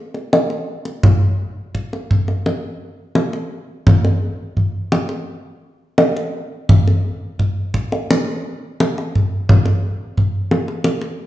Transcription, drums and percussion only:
0.14 kendang slap soft
0.33 kendang high soft
0.50 kendang slap soft
0.85 kendang slap soft
1.03 kendang low medium
1.75 kendang low soft
1.93 kendang slap soft
2.11 kendang low medium
2.28 kendang slap soft
2.46 kendang high soft
3.15 kendang high soft
3.33 kendang slap soft
3.87 kendang low medium
4.05 kendang slap soft
4.57 kendang low soft
4.92 kendang high soft
5.09 kendang slap soft
5.98 kendang high soft
6.17 kendang slap soft
6.69 kendang low medium
6.88 kendang slap soft
7.39 kendang low soft
7.74 kendang low medium
7.92 kendang slap soft
8.11 kendang high soft
8.80 kendang high soft
8.98 kendang slap soft
9.15 kendang low soft
9.49 kendang low medium
9.65 kendang slap soft
10.17 kendang low soft
10.51 kendang high soft
10.68 kendang slap soft
10.84 kendang high soft
11.01 kendang slap soft

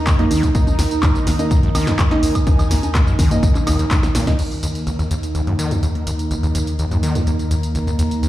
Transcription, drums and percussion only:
0.07 kick loud
0.07 clap loud
0.07 closed hi-hat medium
0.07 tambourine soft
0.19 closed hi-hat soft
0.31 open hi-hat loud
0.31 tambourine medium
0.31 high conga medium
0.43 kick medium
0.43 closed hi-hat medium
0.43 tambourine soft
0.55 kick loud
0.55 closed hi-hat medium
0.55 tambourine soft
0.67 closed hi-hat soft
0.67 tambourine soft
0.67 high conga medium
0.79 snare medium
0.79 open hi-hat loud
0.79 tambourine medium
0.91 closed hi-hat medium
0.91 tambourine soft
1.03 kick loud
1.03 clap loud
1.03 closed hi-hat medium
1.03 tambourine soft
1.03 high conga medium
1.15 closed hi-hat soft
1.15 tambourine soft
1.27 snare medium
1.27 open hi-hat loud
1.27 tambourine medium
1.39 closed hi-hat medium
1.39 tambourine soft
1.39 high conga medium
1.51 kick loud
1.51 closed hi-hat medium
1.51 tambourine soft
1.63 closed hi-hat soft
1.75 snare medium
1.75 open hi-hat loud
1.75 tambourine medium
1.75 high conga medium
1.75 high woodblock medium
1.87 snare medium
1.87 closed hi-hat medium
1.87 tambourine soft
1.99 kick loud
1.99 clap loud
1.99 closed hi-hat medium
1.99 tambourine soft
2.11 snare medium
2.11 closed hi-hat soft
2.11 high conga medium
2.23 open hi-hat loud
2.23 tambourine medium
2.35 kick medium
2.35 closed hi-hat medium
2.35 tambourine soft
2.35 high woodblock medium
2.47 kick loud
2.47 closed hi-hat medium
2.47 tambourine soft
2.47 high conga medium
2.59 closed hi-hat soft
2.59 tambourine soft
2.59 high woodblock medium
2.71 snare medium
2.71 open hi-hat loud
2.71 tambourine medium
2.83 closed hi-hat medium
2.83 tambourine soft
2.83 high conga medium
2.95 kick loud
2.95 snare medium
2.95 clap loud
2.95 closed hi-hat medium
2.95 tambourine soft
3.07 closed hi-hat soft
3.07 tambourine soft
3.19 kick medium
3.19 snare medium
3.19 open hi-hat loud
3.19 tambourine medium
3.19 high conga medium
3.31 closed hi-hat medium
3.31 tambourine soft
3.43 kick loud
3.43 closed hi-hat medium
3.43 tambourine medium
3.55 clap soft
3.55 closed hi-hat soft
3.55 tambourine soft
3.55 high conga medium
3.67 snare medium
3.67 open hi-hat loud
3.67 tambourine medium
3.67 high woodblock medium
3.79 closed hi-hat medium
3.79 tambourine soft
3.91 kick loud
3.91 snare medium
3.91 clap loud
3.91 closed hi-hat medium
3.91 tambourine soft
3.91 high conga medium
4.03 snare medium
4.03 closed hi-hat soft
4.03 tambourine soft
4.15 snare medium
4.15 open hi-hat loud
4.15 tambourine medium
4.27 kick medium
4.27 snare medium
4.27 closed hi-hat medium
4.27 tambourine soft
4.27 high conga medium
4.39 closed hi-hat medium
4.39 tambourine soft
4.39 crash medium
4.51 closed hi-hat soft
4.51 tambourine soft
4.63 closed hi-hat medium
4.63 tambourine medium
4.75 closed hi-hat soft
4.75 tambourine soft
4.87 closed hi-hat soft
4.87 tambourine soft
4.99 closed hi-hat soft
4.99 tambourine soft
5.11 closed hi-hat medium
5.11 tambourine medium
5.23 closed hi-hat medium
5.23 tambourine soft
5.35 closed hi-hat soft
5.35 tambourine soft
5.47 closed hi-hat soft
5.59 closed hi-hat medium
5.59 tambourine medium
5.71 closed hi-hat soft
5.71 tambourine soft
5.83 closed hi-hat medium
5.83 tambourine soft
5.95 closed hi-hat soft
6.07 closed hi-hat medium
6.07 tambourine medium
6.19 closed hi-hat soft
6.19 tambourine soft
6.31 closed hi-hat soft
6.31 tambourine soft
6.43 closed hi-hat soft
6.43 tambourine soft
6.55 closed hi-hat medium
6.55 tambourine medium
6.67 closed hi-hat soft
6.67 tambourine soft
6.79 closed hi-hat soft
6.79 tambourine soft
6.91 closed hi-hat soft
6.91 tambourine soft
7.03 closed hi-hat medium
7.03 tambourine medium
7.15 closed hi-hat medium
7.15 tambourine soft
7.27 closed hi-hat medium
7.27 tambourine soft
7.39 closed hi-hat soft
7.39 tambourine soft
7.51 closed hi-hat medium
7.51 tambourine medium
7.63 closed hi-hat soft
7.63 tambourine soft
7.75 closed hi-hat soft
7.75 tambourine soft
7.87 closed hi-hat soft
7.87 tambourine soft
7.99 closed hi-hat medium
7.99 tambourine medium
8.11 closed hi-hat soft
8.11 tambourine soft
8.23 closed hi-hat soft
8.23 tambourine soft

